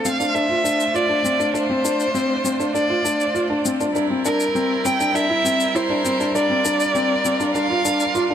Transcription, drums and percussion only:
0.05 shaker
0.20 shaker
0.35 shaker
0.65 shaker
0.80 shaker
0.95 shaker
1.25 shaker
1.40 shaker
1.55 shaker
1.85 shaker
2.00 shaker
2.15 shaker
2.45 shaker
2.60 shaker
2.75 shaker
3.05 shaker
3.20 shaker
3.35 shaker
3.65 shaker
3.80 shaker
3.96 shaker
4.25 shaker
4.40 shaker
4.55 shaker
4.85 shaker
5.01 shaker
5.16 shaker
5.46 shaker
5.60 shaker
5.75 shaker
6.05 shaker
6.20 shaker
6.35 shaker
6.65 shaker
6.80 shaker
6.95 shaker
7.25 shaker
7.40 shaker
7.55 shaker
7.85 shaker
8.00 shaker
8.15 shaker

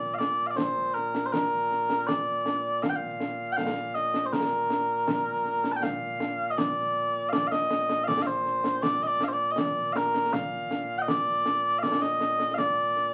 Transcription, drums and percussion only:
0.21 snare
0.58 concert bass drum, snare
0.96 snare
1.15 snare
1.34 concert bass drum, snare
1.71 snare
1.90 snare
2.09 concert bass drum, snare
2.46 snare
2.83 concert bass drum, snare
3.20 snare
3.58 concert bass drum, snare
3.95 snare
4.14 snare
4.33 concert bass drum, snare
4.70 snare
5.08 concert bass drum, snare
5.45 snare
5.64 snare
5.83 concert bass drum, snare
6.20 snare
6.58 concert bass drum, snare
7.33 concert bass drum, snare
7.52 snare
7.71 snare
7.89 snare
8.08 concert bass drum, snare
8.46 snare
8.64 snare
8.83 concert bass drum, snare
9.02 snare
9.21 snare
9.58 concert bass drum, snare
9.96 snare
10.14 snare
10.33 concert bass drum, snare
10.71 snare
11.08 concert bass drum, snare
11.46 snare
11.83 concert bass drum, snare
12.02 snare
12.21 snare
12.39 snare
12.58 concert bass drum, snare
12.95 snare

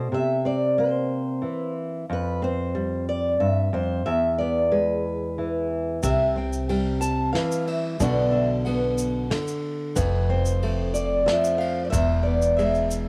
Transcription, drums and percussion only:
6.03 kick, ride, shaker
6.53 shaker
6.69 ride
7.02 shaker
7.35 snare, ride
7.52 shaker
7.67 ride
8.00 kick, ride, shaker
8.66 ride
8.98 shaker
9.31 snare, ride
9.48 shaker
9.96 kick, ride, shaker
10.45 shaker
10.62 ride
10.95 shaker
11.28 snare, ride
11.44 shaker
11.60 ride
11.92 kick, ride, shaker
12.42 shaker
12.58 ride, shaker
12.75 shaker
12.91 shaker

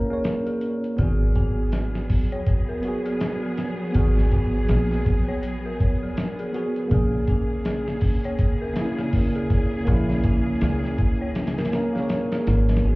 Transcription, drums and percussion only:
0.24 snare, closed hi-hat
0.47 closed hi-hat
0.61 closed hi-hat
0.84 closed hi-hat
0.98 kick, closed hi-hat
1.36 kick, closed hi-hat
1.72 snare, closed hi-hat
1.95 snare
2.10 kick, open hi-hat
2.32 closed hi-hat
2.46 kick, closed hi-hat
2.83 closed hi-hat
3.06 closed hi-hat
3.21 snare, closed hi-hat
3.58 snare, closed hi-hat
3.95 kick, closed hi-hat
4.18 snare
4.32 kick, closed hi-hat
4.69 snare, closed hi-hat
4.91 snare
5.06 kick, closed hi-hat
5.43 closed hi-hat
5.80 kick, closed hi-hat
6.17 snare, closed hi-hat
6.39 closed hi-hat
6.54 closed hi-hat
6.76 closed hi-hat
6.91 kick, closed hi-hat
7.27 kick, closed hi-hat
7.65 snare, closed hi-hat
7.88 snare
8.01 kick, open hi-hat
8.24 closed hi-hat
8.39 kick, closed hi-hat
8.76 snare, closed hi-hat
8.99 snare
9.13 kick, open hi-hat
9.35 closed hi-hat
9.50 kick, closed hi-hat
9.87 kick, closed hi-hat
10.10 snare
10.24 kick, closed hi-hat
10.61 snare, closed hi-hat
10.84 snare
10.98 kick, closed hi-hat
11.35 snare, closed hi-hat
11.47 snare, closed hi-hat
11.58 snare, closed hi-hat
11.65 snare, closed hi-hat
11.73 snare, closed hi-hat
11.96 snare
12.09 snare, closed hi-hat
12.32 snare, closed hi-hat
12.47 snare, closed hi-hat
12.69 snare, closed hi-hat
12.76 snare, closed hi-hat

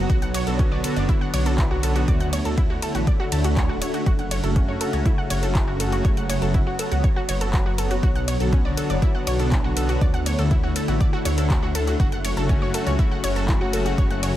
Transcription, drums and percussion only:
0.10 kick, closed hi-hat
0.22 closed hi-hat
0.34 closed hi-hat, ride
0.47 closed hi-hat
0.59 kick, closed hi-hat
0.84 closed hi-hat, ride
0.96 closed hi-hat
1.09 kick, closed hi-hat
1.34 closed hi-hat, ride
1.46 closed hi-hat
1.58 kick, clap, closed hi-hat
1.83 closed hi-hat, ride
1.96 closed hi-hat
2.08 kick, closed hi-hat
2.20 closed hi-hat
2.33 closed hi-hat, ride
2.45 closed hi-hat
2.58 kick, closed hi-hat
2.82 closed hi-hat, ride
2.95 closed hi-hat
3.07 kick, closed hi-hat
3.32 closed hi-hat, ride
3.44 closed hi-hat
3.57 kick, clap, closed hi-hat
3.82 closed hi-hat, ride
3.94 closed hi-hat
4.06 kick, closed hi-hat
4.19 closed hi-hat
4.31 closed hi-hat, ride
4.44 closed hi-hat
4.56 kick, closed hi-hat
4.81 closed hi-hat, ride
4.93 closed hi-hat
5.06 kick, closed hi-hat
5.30 closed hi-hat, ride
5.43 closed hi-hat
5.55 kick, clap, closed hi-hat
5.80 closed hi-hat, ride
5.92 closed hi-hat
6.05 kick, closed hi-hat
6.17 closed hi-hat
6.30 closed hi-hat, ride
6.42 closed hi-hat
6.54 kick, closed hi-hat
6.79 closed hi-hat, ride
6.92 closed hi-hat
7.04 kick, closed hi-hat
7.29 closed hi-hat, ride
7.41 closed hi-hat
7.54 kick, clap, closed hi-hat
7.78 closed hi-hat, ride
7.91 closed hi-hat
8.03 kick, closed hi-hat
8.16 closed hi-hat
8.28 closed hi-hat, ride
8.40 closed hi-hat
8.53 kick, closed hi-hat
8.77 closed hi-hat, ride
8.90 closed hi-hat
9.02 kick, closed hi-hat
9.27 closed hi-hat, ride
9.39 closed hi-hat
9.52 kick, clap, closed hi-hat
9.77 closed hi-hat, ride
9.89 closed hi-hat
10.01 kick, closed hi-hat
10.14 closed hi-hat
10.26 closed hi-hat, ride
10.39 closed hi-hat
10.51 kick, closed hi-hat
10.76 closed hi-hat, ride
10.88 closed hi-hat
11.01 kick, closed hi-hat
11.25 closed hi-hat, ride
11.38 closed hi-hat
11.50 kick, clap, closed hi-hat
11.75 closed hi-hat, ride
11.87 closed hi-hat
12.00 kick, closed hi-hat
12.12 closed hi-hat
12.25 closed hi-hat, ride
12.37 closed hi-hat
12.49 kick, closed hi-hat
12.74 closed hi-hat, ride
12.87 closed hi-hat
12.99 kick, closed hi-hat
13.24 closed hi-hat, ride
13.36 closed hi-hat
13.49 kick, clap, closed hi-hat
13.73 closed hi-hat, ride
13.86 closed hi-hat
13.98 kick, closed hi-hat
14.11 closed hi-hat
14.23 closed hi-hat, ride

